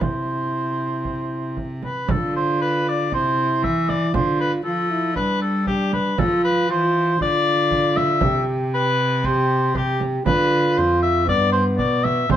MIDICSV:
0, 0, Header, 1, 5, 480
1, 0, Start_track
1, 0, Tempo, 515464
1, 11, Time_signature, 4, 2, 24, 8
1, 4811, Tempo, 509771
1, 11590, End_track
2, 0, Start_track
2, 0, Title_t, "Oboe"
2, 0, Program_c, 0, 68
2, 22, Note_on_c, 0, 72, 75
2, 1438, Note_off_c, 0, 72, 0
2, 1708, Note_on_c, 0, 71, 72
2, 1960, Note_on_c, 0, 69, 79
2, 1974, Note_off_c, 0, 71, 0
2, 2193, Note_off_c, 0, 69, 0
2, 2198, Note_on_c, 0, 72, 91
2, 2426, Note_off_c, 0, 72, 0
2, 2432, Note_on_c, 0, 71, 93
2, 2662, Note_off_c, 0, 71, 0
2, 2687, Note_on_c, 0, 74, 99
2, 2909, Note_off_c, 0, 74, 0
2, 2923, Note_on_c, 0, 72, 105
2, 3381, Note_off_c, 0, 72, 0
2, 3386, Note_on_c, 0, 76, 97
2, 3622, Note_on_c, 0, 74, 94
2, 3635, Note_off_c, 0, 76, 0
2, 3853, Note_off_c, 0, 74, 0
2, 3858, Note_on_c, 0, 72, 92
2, 4091, Note_off_c, 0, 72, 0
2, 4097, Note_on_c, 0, 71, 97
2, 4204, Note_off_c, 0, 71, 0
2, 4326, Note_on_c, 0, 69, 99
2, 4797, Note_off_c, 0, 69, 0
2, 4802, Note_on_c, 0, 71, 101
2, 5039, Note_off_c, 0, 71, 0
2, 5045, Note_on_c, 0, 69, 87
2, 5280, Note_off_c, 0, 69, 0
2, 5286, Note_on_c, 0, 67, 88
2, 5524, Note_off_c, 0, 67, 0
2, 5532, Note_on_c, 0, 71, 95
2, 5770, Note_on_c, 0, 69, 94
2, 5784, Note_off_c, 0, 71, 0
2, 6005, Note_off_c, 0, 69, 0
2, 6010, Note_on_c, 0, 71, 104
2, 6247, Note_off_c, 0, 71, 0
2, 6260, Note_on_c, 0, 72, 108
2, 6725, Note_off_c, 0, 72, 0
2, 6744, Note_on_c, 0, 74, 125
2, 7446, Note_on_c, 0, 76, 110
2, 7461, Note_off_c, 0, 74, 0
2, 7916, Note_off_c, 0, 76, 0
2, 8177, Note_on_c, 0, 71, 121
2, 8658, Note_on_c, 0, 72, 102
2, 8672, Note_off_c, 0, 71, 0
2, 9138, Note_on_c, 0, 67, 90
2, 9152, Note_off_c, 0, 72, 0
2, 9372, Note_off_c, 0, 67, 0
2, 9609, Note_on_c, 0, 71, 117
2, 10094, Note_on_c, 0, 72, 101
2, 10108, Note_off_c, 0, 71, 0
2, 10317, Note_off_c, 0, 72, 0
2, 10323, Note_on_c, 0, 76, 108
2, 10560, Note_off_c, 0, 76, 0
2, 10573, Note_on_c, 0, 74, 123
2, 10788, Note_off_c, 0, 74, 0
2, 10794, Note_on_c, 0, 72, 100
2, 10905, Note_off_c, 0, 72, 0
2, 11035, Note_on_c, 0, 74, 106
2, 11278, Note_on_c, 0, 76, 110
2, 11292, Note_off_c, 0, 74, 0
2, 11524, Note_off_c, 0, 76, 0
2, 11538, Note_on_c, 0, 72, 117
2, 11590, Note_off_c, 0, 72, 0
2, 11590, End_track
3, 0, Start_track
3, 0, Title_t, "Trombone"
3, 0, Program_c, 1, 57
3, 7, Note_on_c, 1, 64, 58
3, 1702, Note_off_c, 1, 64, 0
3, 1937, Note_on_c, 1, 65, 69
3, 2861, Note_off_c, 1, 65, 0
3, 2898, Note_on_c, 1, 64, 70
3, 3849, Note_on_c, 1, 65, 70
3, 3863, Note_off_c, 1, 64, 0
3, 4325, Note_off_c, 1, 65, 0
3, 4330, Note_on_c, 1, 65, 67
3, 4568, Note_on_c, 1, 64, 68
3, 4582, Note_off_c, 1, 65, 0
3, 4791, Note_on_c, 1, 62, 70
3, 4805, Note_off_c, 1, 64, 0
3, 5275, Note_off_c, 1, 62, 0
3, 5281, Note_on_c, 1, 62, 64
3, 5758, Note_off_c, 1, 62, 0
3, 5769, Note_on_c, 1, 65, 75
3, 6241, Note_off_c, 1, 65, 0
3, 6249, Note_on_c, 1, 65, 75
3, 6714, Note_off_c, 1, 65, 0
3, 6719, Note_on_c, 1, 65, 77
3, 7699, Note_on_c, 1, 67, 79
3, 7713, Note_off_c, 1, 65, 0
3, 8392, Note_off_c, 1, 67, 0
3, 8654, Note_on_c, 1, 67, 84
3, 9097, Note_off_c, 1, 67, 0
3, 9134, Note_on_c, 1, 67, 80
3, 9600, Note_off_c, 1, 67, 0
3, 9607, Note_on_c, 1, 65, 85
3, 10560, Note_on_c, 1, 59, 84
3, 10574, Note_off_c, 1, 65, 0
3, 11518, Note_off_c, 1, 59, 0
3, 11524, Note_on_c, 1, 60, 85
3, 11590, Note_off_c, 1, 60, 0
3, 11590, End_track
4, 0, Start_track
4, 0, Title_t, "Cello"
4, 0, Program_c, 2, 42
4, 1, Note_on_c, 2, 48, 56
4, 1717, Note_off_c, 2, 48, 0
4, 1942, Note_on_c, 2, 50, 73
4, 2900, Note_on_c, 2, 48, 74
4, 2914, Note_off_c, 2, 50, 0
4, 3375, Note_on_c, 2, 52, 67
4, 3389, Note_off_c, 2, 48, 0
4, 3849, Note_off_c, 2, 52, 0
4, 3855, Note_on_c, 2, 50, 70
4, 4324, Note_off_c, 2, 50, 0
4, 4333, Note_on_c, 2, 53, 66
4, 4815, Note_on_c, 2, 55, 76
4, 4829, Note_off_c, 2, 53, 0
4, 5769, Note_off_c, 2, 55, 0
4, 5774, Note_on_c, 2, 53, 72
4, 6248, Note_on_c, 2, 52, 70
4, 6262, Note_off_c, 2, 53, 0
4, 6714, Note_off_c, 2, 52, 0
4, 6719, Note_on_c, 2, 50, 83
4, 7685, Note_on_c, 2, 48, 81
4, 7699, Note_off_c, 2, 50, 0
4, 9599, Note_off_c, 2, 48, 0
4, 9605, Note_on_c, 2, 50, 81
4, 10093, Note_on_c, 2, 41, 77
4, 10107, Note_off_c, 2, 50, 0
4, 10564, Note_on_c, 2, 43, 87
4, 10578, Note_off_c, 2, 41, 0
4, 11049, Note_on_c, 2, 47, 81
4, 11064, Note_off_c, 2, 43, 0
4, 11524, Note_off_c, 2, 47, 0
4, 11529, Note_on_c, 2, 45, 81
4, 11590, Note_off_c, 2, 45, 0
4, 11590, End_track
5, 0, Start_track
5, 0, Title_t, "Frame drum"
5, 10, Note_on_c, 9, 64, 72
5, 103, Note_off_c, 9, 64, 0
5, 976, Note_on_c, 9, 64, 43
5, 1069, Note_off_c, 9, 64, 0
5, 1461, Note_on_c, 9, 64, 44
5, 1554, Note_off_c, 9, 64, 0
5, 1701, Note_on_c, 9, 64, 41
5, 1794, Note_off_c, 9, 64, 0
5, 1942, Note_on_c, 9, 64, 89
5, 2035, Note_off_c, 9, 64, 0
5, 2904, Note_on_c, 9, 64, 48
5, 2998, Note_off_c, 9, 64, 0
5, 3388, Note_on_c, 9, 64, 52
5, 3481, Note_off_c, 9, 64, 0
5, 3620, Note_on_c, 9, 64, 49
5, 3713, Note_off_c, 9, 64, 0
5, 3856, Note_on_c, 9, 64, 88
5, 3949, Note_off_c, 9, 64, 0
5, 4804, Note_on_c, 9, 64, 48
5, 4898, Note_off_c, 9, 64, 0
5, 5283, Note_on_c, 9, 64, 51
5, 5377, Note_off_c, 9, 64, 0
5, 5527, Note_on_c, 9, 64, 50
5, 5621, Note_off_c, 9, 64, 0
5, 5767, Note_on_c, 9, 64, 86
5, 5861, Note_off_c, 9, 64, 0
5, 6733, Note_on_c, 9, 64, 50
5, 6827, Note_off_c, 9, 64, 0
5, 7208, Note_on_c, 9, 64, 54
5, 7302, Note_off_c, 9, 64, 0
5, 7447, Note_on_c, 9, 64, 52
5, 7541, Note_off_c, 9, 64, 0
5, 7677, Note_on_c, 9, 64, 91
5, 7772, Note_off_c, 9, 64, 0
5, 8644, Note_on_c, 9, 64, 49
5, 8738, Note_off_c, 9, 64, 0
5, 9123, Note_on_c, 9, 64, 55
5, 9217, Note_off_c, 9, 64, 0
5, 9366, Note_on_c, 9, 64, 49
5, 9461, Note_off_c, 9, 64, 0
5, 9607, Note_on_c, 9, 64, 91
5, 9701, Note_off_c, 9, 64, 0
5, 10564, Note_on_c, 9, 64, 49
5, 10658, Note_off_c, 9, 64, 0
5, 11044, Note_on_c, 9, 64, 54
5, 11138, Note_off_c, 9, 64, 0
5, 11291, Note_on_c, 9, 64, 53
5, 11385, Note_off_c, 9, 64, 0
5, 11524, Note_on_c, 9, 64, 90
5, 11590, Note_off_c, 9, 64, 0
5, 11590, End_track
0, 0, End_of_file